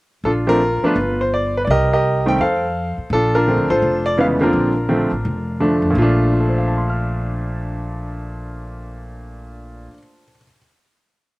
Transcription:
0.24 A#1 D4 F4 A4
0.47 F3 A3 C4 D4 F4 A#4
0.83 F3 A3 B3 D4 B4, muted upright bass stroke
0.87 F4
0.96 G1
1.21 C5
1.34 D5
1.57 B4
1.65 C2 D5
1.71 G4 A#4 D#5
1.93 G4 A#4 D#5
2.26 D#3 G3 A3 C4 G5
2.38 F2 A4 C5 F5
2.98 muted upright bass stroke
3.10 A#1 D4 F4 A4
3.35 D4 F4 A#4
3.47 D3 F3 A3 C4
3.58 D2
3.70 A1 F4 A4 C5
3.82 F1
4.06 D5
4.17 C#3 E3 G#3 B3 F5
4.41 D3 F3 A#3 C4 D4 F4 A#4
4.53 A#1
4.89 D3 F3 A3 C4
5.11 A1
5.25 F1
5.60 D3 F3 A3 D4
5.82 F2
5.90 A#2 F3
5.95 A#1 A3 F4
6.02 D4
6.32 F4
6.40 A4
6.49 C5
6.58 F5
6.68 A5
6.78 C6
6.90 F6

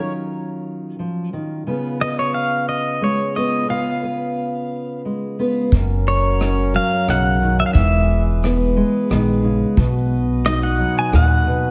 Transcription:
Already playing: D#3 F#3 C#4 F4 C#5
0.00 A#4
0.99 F3
1.33 D#3
1.67 C#3 B3 F4 B4
2.01 B4 D#5
2.19 C#5
2.34 F5
2.69 D#5
3.01 G#3 C#5
3.36 B3 F4 B4 D#5
3.68 C#3 B3 F4 B4 F5
4.03 B4
5.05 G#3
5.39 B3 F4 B4
5.72 F#1 F#3 C#4 A#4, kick, closed hi-hat
6.08 C#5
6.39 C#4, cross-stick, closed hi-hat
6.74 F#3 F5
7.07 B1 C#3 F#5, cross-stick, closed hi-hat
7.42 D#3
7.60 E5
7.66 F5
7.73 E1 E3 G#3 G#4 B4 E5, kick, closed hi-hat
8.42 B3, cross-stick, closed hi-hat
8.76 G#3
9.10 A#1 D#3, cross-stick, closed hi-hat
9.44 C#3
9.77 B1 B2 F#4 D#5, kick, closed hi-hat
10.44 D#4 D#5, cross-stick, closed hi-hat
10.63 F#5
10.79 F#3
10.99 G#5
11.12 D#2 A#2 F#5, cross-stick, closed hi-hat
11.46 B2

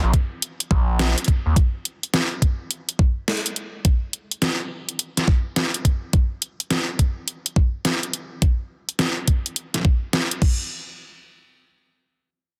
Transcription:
0.03 A#1
0.14 kick, closed hi-hat
0.42 closed hi-hat
0.60 closed hi-hat
0.71 A#1, kick
0.99 snare, closed hi-hat
1.18 closed hi-hat
1.24 kick, closed hi-hat
1.28 closed hi-hat
1.46 D#2
1.56 kick, closed hi-hat
1.85 closed hi-hat
2.03 closed hi-hat
2.14 snare, closed hi-hat
2.42 kick, closed hi-hat
2.71 closed hi-hat
2.89 closed hi-hat
2.99 kick
3.28 snare, closed hi-hat
3.37 closed hi-hat
3.46 closed hi-hat
3.56 closed hi-hat
3.85 kick, closed hi-hat
4.13 closed hi-hat
4.31 closed hi-hat
4.42 snare, closed hi-hat
4.89 closed hi-hat
4.99 closed hi-hat
5.17 snare, closed hi-hat
5.28 kick
5.56 snare, closed hi-hat
5.74 closed hi-hat
5.85 kick, closed hi-hat
6.13 kick, closed hi-hat
6.42 closed hi-hat
6.60 closed hi-hat
6.71 snare, closed hi-hat
6.99 kick, closed hi-hat
7.28 closed hi-hat
7.46 closed hi-hat
7.56 kick
7.85 snare, closed hi-hat
8.03 closed hi-hat
8.13 closed hi-hat
8.42 kick, closed hi-hat
8.89 closed hi-hat
8.99 snare, closed hi-hat
9.28 kick, closed hi-hat
9.46 closed hi-hat
9.56 closed hi-hat
9.74 snare, closed hi-hat
9.76 snare
9.80 snare
9.81 snare
9.83 kick, snare
10.13 snare, closed hi-hat
10.31 closed hi-hat
10.42 kick, crash

